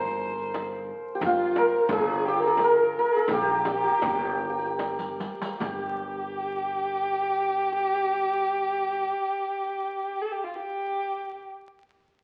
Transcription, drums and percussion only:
0.04 riq soft
0.04 tombak ka soft
0.38 riq soft
0.54 riq soft
0.54 tombak tek medium
0.54 frame drum medium
0.89 tombak ka soft
1.22 riq medium
1.22 frame drum medium
1.22 tombak dum medium
1.56 riq soft
1.56 tombak tek medium
1.56 frame drum medium
1.89 riq medium
1.89 frame drum loud
1.89 tombak dum medium
2.08 tombak ka soft
2.43 riq soft
2.57 riq soft
2.57 tombak tek medium
2.57 frame drum medium
2.94 tombak ka soft
3.28 riq medium
3.28 frame drum medium
3.28 tombak dum medium
3.65 riq medium
3.65 tombak tek medium
3.65 frame drum medium
4.01 riq medium
4.01 tombak dum medium
4.01 frame drum loud
4.21 riq soft
4.59 riq soft
4.59 tombak ka soft
4.79 riq medium
4.79 tombak tek medium
4.79 frame drum medium
4.99 riq medium
5.20 riq medium
5.20 tombak ka soft
5.42 riq loud
5.61 riq medium
5.61 tombak dum medium
5.61 frame drum medium

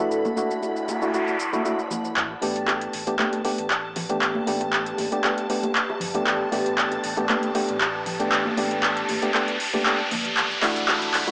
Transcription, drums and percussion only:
0.11 shaker soft
0.25 high bongo medium
0.25 high conga medium
0.25 shaker soft
0.37 shaker medium
0.51 shaker soft
0.62 high bongo medium
0.62 shaker soft
0.76 shaker soft
0.88 high bongo medium
0.88 high conga medium
0.88 shaker medium
1.02 shaker soft
1.14 shaker soft
1.27 high bongo soft
1.27 shaker soft
1.40 shaker medium
1.53 high bongo medium
1.53 high conga medium
1.53 shaker soft
1.65 shaker soft
1.79 shaker soft
1.91 high bongo medium
1.91 high conga medium
1.91 low conga medium
1.91 shaker medium
2.05 shaker soft
2.16 clap soft
2.42 open hi-hat loud
2.42 high bongo medium
2.56 closed hi-hat medium
2.68 clap soft
2.68 high bongo medium
2.81 closed hi-hat medium
2.93 open hi-hat loud
3.07 closed hi-hat medium
3.07 high bongo medium
3.19 clap soft
3.19 high conga medium
3.33 closed hi-hat medium
3.33 high bongo medium
3.45 open hi-hat loud
3.58 closed hi-hat medium
3.70 clap soft
3.70 high bongo medium
3.96 open hi-hat loud
3.96 high bongo medium
3.96 low conga medium
4.10 closed hi-hat medium
4.22 clap medium
4.35 high bongo medium
4.35 high conga loud
4.47 open hi-hat loud
4.60 closed hi-hat medium
4.60 high bongo medium
4.73 clap medium
4.86 closed hi-hat medium
4.98 open hi-hat loud
4.98 high bongo soft
4.98 high conga medium
5.12 closed hi-hat medium
5.24 clap medium
5.24 high bongo medium
5.38 closed hi-hat medium
5.50 open hi-hat loud
5.63 closed hi-hat medium
5.63 high bongo soft
5.63 high conga medium
5.75 clap medium
5.90 high bongo medium
6.00 open hi-hat loud
6.00 low conga medium
6.15 closed hi-hat medium
6.26 clap medium
6.26 high bongo medium
6.52 open hi-hat loud
6.52 high bongo medium
6.66 closed hi-hat medium
6.78 clap medium
6.92 closed hi-hat soft
6.92 high bongo medium
7.04 open hi-hat loud
7.17 closed hi-hat medium
7.17 high bongo medium
7.29 clap medium
7.29 high conga medium
7.43 closed hi-hat medium
7.55 open hi-hat loud
7.55 high bongo medium
7.68 closed hi-hat medium
7.80 clap medium
7.80 high bongo medium
8.06 open hi-hat loud
8.06 low conga medium
8.20 closed hi-hat medium
8.20 high bongo soft
8.32 clap medium
8.46 high bongo medium
8.46 high conga medium
8.57 open hi-hat loud
8.71 closed hi-hat medium
8.83 clap medium
8.83 high bongo medium
8.97 closed hi-hat medium
9.09 open hi-hat loud
9.09 high bongo medium
9.09 high conga medium
9.22 closed hi-hat medium
9.34 clap medium
9.48 closed hi-hat medium
9.48 high bongo soft
9.60 open hi-hat loud
9.74 open hi-hat medium
9.74 high bongo medium
9.74 high conga medium
9.86 clap medium
10.11 open hi-hat loud
10.11 high bongo soft
10.11 high conga medium
10.11 low conga medium
10.25 closed hi-hat medium
10.37 clap medium
10.37 shaker soft
10.51 shaker soft
10.62 clap medium
10.62 open hi-hat loud
10.62 high bongo soft
10.62 shaker medium
10.76 closed hi-hat medium
10.76 shaker soft
10.88 clap medium
10.88 high bongo medium
10.88 shaker soft
11.02 closed hi-hat medium
11.02 shaker soft
11.14 clap medium
11.14 open hi-hat loud
11.14 shaker medium
11.28 closed hi-hat medium
11.28 high bongo medium
11.28 shaker soft

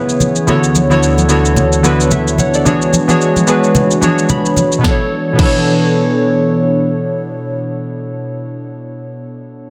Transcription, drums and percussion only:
0.09 shaker medium
0.20 high conga medium
0.20 low conga medium
0.20 shaker medium
0.36 shaker medium
0.48 low conga medium
0.48 shaker medium
0.64 shaker medium
0.75 high conga medium
0.75 shaker medium
0.91 high conga medium
0.91 shaker soft
1.03 shaker medium
1.18 high conga medium
1.18 shaker soft
1.29 shaker medium
1.45 shaker soft
1.56 low conga medium
1.56 shaker medium
1.73 shaker soft
1.84 high conga medium
1.84 shaker medium
2.01 shaker medium
2.11 high conga medium
2.11 low conga medium
2.11 shaker medium
2.28 shaker medium
2.38 high conga medium
2.38 low conga medium
2.38 shaker medium
2.54 shaker medium
2.66 low conga medium
2.66 shaker medium
2.82 shaker medium
2.93 high conga medium
2.93 shaker medium
3.09 high conga medium
3.09 shaker soft
3.21 shaker medium
3.36 high conga medium
3.36 shaker soft
3.48 shaker medium
3.64 shaker soft
3.75 low conga medium
3.75 shaker medium
3.91 shaker soft
4.02 high conga medium
4.02 shaker medium
4.19 shaker medium
4.29 high conga medium
4.29 low conga medium
4.29 shaker medium
4.46 shaker medium
4.57 high conga medium
4.57 low conga medium
4.57 shaker medium
4.72 shaker medium
4.84 kick loud
4.84 snare medium
4.84 high conga medium
5.39 kick loud
5.39 crash medium
5.39 high conga medium

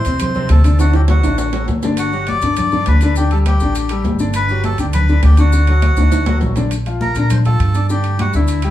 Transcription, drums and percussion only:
0.05 high conga soft
0.05 high timbale medium
0.05 maracas medium
0.19 high conga soft
0.19 low conga medium
0.19 high timbale loud
0.19 maracas medium
0.34 high conga soft
0.34 low conga medium
0.34 maracas soft
0.49 high conga medium
0.49 high timbale medium
0.49 low timbale medium
0.49 maracas soft
0.64 high timbale medium
0.64 maracas medium
0.79 high conga soft
0.79 high timbale medium
0.79 maracas medium
0.93 high conga soft
0.93 high timbale medium
0.93 maracas soft
1.08 high conga medium
1.08 low timbale loud
1.08 maracas soft
1.23 high conga soft
1.23 high timbale medium
1.23 maracas medium
1.38 high conga soft
1.38 low timbale medium
1.38 maracas medium
1.53 high conga soft
1.53 low timbale medium
1.53 maracas soft
1.68 high conga medium
1.68 low timbale medium
1.68 maracas soft
1.83 high conga medium
1.83 low timbale medium
1.83 maracas medium
1.97 high conga soft
1.97 high timbale medium
1.97 maracas medium
2.12 high conga soft
2.12 maracas soft
2.27 high conga medium
2.27 high timbale medium
2.27 low timbale medium
2.27 maracas soft
2.42 high timbale medium
2.42 maracas medium
2.56 high conga soft
2.56 low conga medium
2.56 high timbale medium
2.56 maracas medium
2.71 high conga soft
2.71 low conga medium
2.71 maracas soft
2.86 high conga medium
2.86 high timbale medium
2.86 low timbale medium
2.86 maracas soft
3.01 high timbale medium
3.01 maracas medium
3.16 high conga soft
3.16 maracas medium
3.31 high conga soft
3.31 high timbale medium
3.31 maracas soft
3.46 high conga medium
3.46 high timbale medium
3.46 low timbale medium
3.46 maracas soft
3.60 high conga soft
3.60 maracas medium
3.75 high conga soft
3.75 high timbale medium
3.75 maracas medium
3.89 high conga soft
3.89 high timbale medium
3.89 maracas soft
4.04 high conga medium
4.04 low timbale medium
4.04 maracas soft
4.19 high conga medium
4.19 maracas medium
4.34 high conga soft
4.34 high timbale medium
4.34 maracas medium
4.49 high conga soft
4.49 maracas soft
4.64 high conga medium
4.64 high timbale medium
4.64 low timbale medium
4.64 maracas soft
4.78 high conga soft
4.78 high timbale medium
4.78 maracas medium
4.93 high conga soft
4.93 low conga medium
4.93 high timbale medium
4.93 maracas medium
5.08 maracas soft
5.23 high conga medium
5.23 high timbale medium
5.23 low timbale medium
5.23 maracas soft
5.37 high timbale medium
5.37 maracas medium
5.53 high conga soft
5.53 maracas medium
5.67 high conga soft
5.67 high timbale medium
5.67 maracas soft
5.82 high conga medium
5.82 high timbale medium
5.82 low timbale medium
5.82 maracas soft
5.97 high conga medium
5.97 high timbale medium
5.97 maracas medium
6.12 high conga medium
6.12 high timbale medium
6.12 maracas medium
6.26 high conga medium
6.26 low timbale loud
6.26 maracas soft
6.41 low conga medium
6.41 low timbale medium
6.41 maracas soft
6.56 low conga medium
6.56 low timbale medium
6.56 maracas medium
6.71 high conga soft
6.71 high timbale medium
6.71 maracas medium
6.86 high conga soft
6.86 high timbale medium
6.86 maracas soft
7.01 high conga medium
7.01 maracas soft
7.15 high conga soft
7.15 high timbale medium
7.15 maracas medium
7.30 high conga soft
7.30 low conga medium
7.30 high timbale loud
7.30 maracas medium
7.45 high conga soft
7.45 low conga medium
7.45 high timbale medium
7.45 maracas soft
7.60 high conga soft
7.60 high timbale medium
7.60 maracas soft
7.74 high timbale medium
7.74 maracas medium
7.89 high conga soft
7.89 maracas medium
8.04 high conga soft
8.04 high timbale medium
8.04 maracas soft
8.19 high conga loud
8.19 high timbale medium
8.19 maracas soft
8.33 high conga soft
8.33 maracas medium
8.48 high conga soft
8.48 high timbale medium
8.48 maracas medium
8.62 high conga soft
8.62 high timbale medium
8.62 maracas soft

